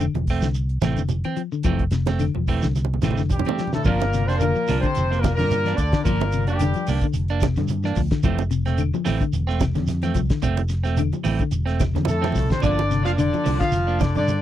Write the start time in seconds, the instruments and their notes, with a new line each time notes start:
0.00 clean electric guitar D3, closed hi-hat, claves, shekere
0.14 fingered electric bass E1, clean electric guitar F3, closed hi-hat, high conga
0.27 clean electric guitar A3 C4, kick, open hi-hat, claves, shekere
0.41 fingered electric bass C2, clean electric guitar D3, snare, closed hi-hat, shekere
0.55 closed hi-hat, high conga, shekere
0.69 closed hi-hat
0.82 fingered electric bass A1, clean electric guitar C3 E3 A3 C4, snare, closed hi-hat, high conga, claves, shekere
0.96 fingered electric bass F1, clean electric guitar D3, closed hi-hat, shekere
1.08 closed hi-hat, high conga, shekere
1.24 clean electric guitar E3 C4, closed hi-hat, claves
1.36 clean electric guitar F3, closed hi-hat, shekere
1.52 clean electric guitar D3, shekere
1.63 fingered electric bass F1, clean electric guitar E3 F3 A3 C4, kick, closed hi-hat, claves, shekere
1.79 kick, closed hi-hat
1.91 clean electric guitar C3, snare, closed hi-hat, shekere
2.06 clean electric guitar A3 C4, snare, closed hi-hat, high conga, shekere
2.19 clean electric guitar D3, snare, closed hi-hat, high conga, claves, shekere
2.35 fingered electric bass E1, clean electric guitar F3, high conga
2.47 clean electric guitar E3 A3 C4, kick, open hi-hat, claves, shekere
2.62 fingered electric bass C2, clean electric guitar D3, snare, closed hi-hat, shekere
2.75 snare, closed hi-hat, high conga, shekere
2.85 high conga
2.94 high conga
3.02 fingered electric bass A1, clean electric guitar C3 E3 A3 C4, snare, closed hi-hat, high conga, claves, shekere
3.11 high conga
3.17 fingered electric bass F1, clean electric guitar D3, snare, shekere
3.29 baritone saxophone G2, horn section G3 G4, trumpet G4, kick, closed hi-hat, low conga, shekere
3.39 low conga
3.45 clean electric guitar E3 A3 C4, closed hi-hat, low conga, claves
3.58 clean electric guitar F3, snare, shekere
3.67 low conga
3.72 baritone saxophone A2, clean electric guitar D3, horn section A3 A4, trumpet A4, snare, shekere
3.77 low conga
3.84 fingered electric bass G1, baritone saxophone A#2, clean electric guitar F3 A#3 D4, horn section A#3 A#4, trumpet A#4, kick, crash, low conga, claves, shekere
4.00 snare, closed hi-hat, high conga, shekere
4.13 clean electric guitar C3, snare, closed hi-hat, shekere
4.26 fingered electric bass F1, baritone saxophone C3, clean electric guitar A#3 D4, horn section C4 C5, trumpet C5, closed hi-hat, shekere
4.30 snare
4.38 baritone saxophone A#2, clean electric guitar D3, horn section A#3 A#4, trumpet A#4, closed hi-hat, high conga, shekere
4.42 claves
4.55 clean electric guitar F3, shekere
4.68 fingered electric bass C2, clean electric guitar F3 A#3 D4, snare, open hi-hat, high conga, claves, shekere
4.79 baritone saxophone C3, horn section C4 C5, trumpet C5, closed hi-hat
4.83 clean electric guitar D3, kick, shekere
4.95 fingered electric bass F1, closed hi-hat, high conga, shekere
5.11 clean electric guitar A#3, muted clean electric guitar stroke, snare, shekere
5.19 baritone saxophone A#2, clean electric guitar C3, horn section A#3 A#4, trumpet A#4, claves
5.24 kick, snare, closed hi-hat, high conga, shekere
5.34 baritone saxophone A#2, horn section A#3 A#4, trumpet A#4
5.38 fingered electric bass G2, clean electric guitar D3, snare, closed hi-hat, low conga, shekere
5.51 closed hi-hat, high conga, shekere
5.65 clean electric guitar E3 A#3 D4, snare, closed hi-hat, claves, shekere
5.75 fingered electric bass D2, baritone saxophone D3, horn section D4 D5, trumpet D5, kick, closed hi-hat, shekere
5.92 clean electric guitar D3, muted fingered electric bass stroke, kick, snare, closed hi-hat, shekere
6.03 fingered electric bass G1, baritone saxophone A#2, clean electric guitar F3 A#3, horn section A#3 A#4, trumpet A#4, kick, closed hi-hat, low conga, shekere
6.07 muted clean electric guitar stroke, claves
6.20 closed hi-hat, high conga, shekere
6.32 clean electric guitar C3, closed hi-hat, shekere
6.46 fingered electric bass F1, baritone saxophone G2, horn section G3 G4, clean electric guitar A#3 D4, trumpet G4, closed hi-hat, shekere
6.59 clean electric guitar D3, closed hi-hat, high conga, claves, shekere
6.74 clean electric guitar F3, closed hi-hat, shekere
6.86 fingered electric bass C2, clean electric guitar A#3 D4, muted clean electric guitar stroke, open hi-hat, high conga, claves, shekere
7.01 clean electric guitar D3, kick, closed hi-hat, shekere
7.13 fingered electric bass F1, closed hi-hat, shekere
7.28 clean electric guitar A#3 D4, closed hi-hat, shekere
7.41 clean electric guitar C3, kick, snare, closed hi-hat, high conga, claves, shekere
7.56 fingered electric bass G2, clean electric guitar D3, snare, closed hi-hat, low conga, shekere
7.68 closed hi-hat, high conga, shekere
7.83 clean electric guitar E3 A#3 D4, snare, claves, shekere
7.95 fingered electric bass D2, clean electric guitar F3, kick, open hi-hat, low conga, shekere
8.11 clean electric guitar D3, muted fingered electric bass stroke, kick, snare, closed hi-hat, shekere
8.23 fingered electric bass F1, clean electric guitar E3 F3 A3 C4, kick, closed hi-hat, low conga, claves, shekere
8.39 closed hi-hat, high conga, shekere
8.51 clean electric guitar C3, closed hi-hat, shekere
8.65 fingered electric bass E1, clean electric guitar A3 C4, snare, closed hi-hat, shekere
8.78 clean electric guitar D3, closed hi-hat, claves, shekere
8.94 clean electric guitar F3, high conga, shekere
9.05 fingered electric bass A1, clean electric guitar E3 A3 C4, snare, open hi-hat, high conga, shekere
9.09 claves
9.21 clean electric guitar D3, kick, closed hi-hat, shekere
9.33 fingered electric bass E1, closed hi-hat, shekere
9.47 clean electric guitar A3 C4, snare, shekere
9.60 clean electric guitar C3, kick, snare, closed hi-hat, high conga, claves, shekere
9.75 fingered electric bass F2, clean electric guitar D3, snare, closed hi-hat, low conga, shekere
9.87 snare, closed hi-hat, high conga, shekere
10.02 clean electric guitar E3 A3 C4, snare, closed hi-hat, claves, shekere
10.14 fingered electric bass C2, clean electric guitar F3, kick, closed hi-hat, low conga, shekere
10.30 clean electric guitar D3, muted fingered electric bass stroke, kick, snare, closed hi-hat, shekere
10.42 fingered electric bass F1, clean electric guitar A3 C4, muted clean electric guitar stroke, kick, closed hi-hat, low conga, claves, shekere
10.57 closed hi-hat, high conga, shekere
10.69 muted clean electric guitar stroke, snare, closed hi-hat, shekere
10.84 fingered electric bass E1, clean electric guitar A3 C4, snare, closed hi-hat, shekere
10.97 clean electric guitar D3, closed hi-hat, high conga, claves, shekere
11.13 clean electric guitar F3, closed hi-hat, high conga, shekere
11.24 fingered electric bass A1, clean electric guitar E3 A3 C4, open hi-hat, high conga, claves, shekere
11.39 clean electric guitar D3, kick, closed hi-hat, shekere
11.51 fingered electric bass E1, closed hi-hat, shekere
11.66 clean electric guitar A3 C4, snare, closed hi-hat, shekere
11.80 clean electric guitar C3, kick, snare, closed hi-hat, high conga, claves, shekere
11.95 fingered electric bass F2, clean electric guitar D3, snare, closed hi-hat, high conga, shekere
12.05 baritone saxophone A2, horn section A3 A4, trumpet A4, closed hi-hat, high conga, shekere
12.09 snare
12.22 clean electric guitar E3 A3 C4, snare, high conga, claves, shekere
12.32 fingered electric bass C2, clean electric guitar F3, kick, open hi-hat, low conga, shekere
12.37 snare
12.42 low conga
12.50 baritone saxophone C3, clean electric guitar D3, horn section C4 C5, trumpet C5, muted fingered electric bass stroke, kick, snare, closed hi-hat, low conga, shekere
12.60 fingered electric bass G1, baritone saxophone D3, clean electric guitar F3 A#3 D4, horn section D4 D5, trumpet D5, kick, closed hi-hat, low conga, claves, shekere
12.64 low conga
12.78 closed hi-hat, high conga, shekere
12.91 clean electric guitar C3, snare, closed hi-hat, shekere
13.04 fingered electric bass F1, baritone saxophone F3, clean electric guitar A#3 D4, horn section F4 F5, trumpet F5, snare, closed hi-hat, shekere
13.17 clean electric guitar D3, baritone saxophone D3, horn section D4 D5, trumpet D5, closed hi-hat, claves, shekere
13.34 clean electric guitar F3, high conga, shekere
13.44 fingered electric bass C2, clean electric guitar F3 D4, open hi-hat, high conga, claves, shekere
13.59 clean electric guitar D3, baritone saxophone F3, horn section F4 F5, trumpet F5, kick, snare, closed hi-hat, shekere
13.72 fingered electric bass F1, snare, closed hi-hat, shekere
13.87 clean electric guitar A#3 D4, shekere
14.00 clean electric guitar C3, baritone saxophone D3, horn section D4 D5, trumpet D5, kick, snare, closed hi-hat, high conga, claves, shekere
14.15 fingered electric bass G2, clean electric guitar D3, baritone saxophone D3, horn section D4 D5, trumpet D5, closed hi-hat, low conga, shekere
14.28 closed hi-hat, high conga, shekere